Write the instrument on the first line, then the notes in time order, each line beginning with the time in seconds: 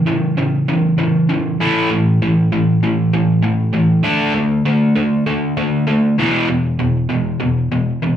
overdriven electric guitar
0.07 C#3 E3
0.38 C#3 E3
0.69 C#3 E3
0.98 C#3 E3
1.29 C#3 E3
1.60 A2 E3 A3
1.91 A2 E3
2.22 A2 E3
2.52 A2 E3
2.83 A2 E3
3.13 A2 E3
3.43 A2 E3
3.73 A2 E3
4.04 D3 A3 D4
4.35 D3 A3
4.66 D3 A3
4.96 D3 A3
5.27 D3 A3
5.57 D3 A3
5.87 D3 A3
6.18 E2 B2 E3
6.48 E2 B2
6.79 E2 B2
7.09 E2 B2
7.40 E2 B2
7.72 E2 B2
8.02 E2 B2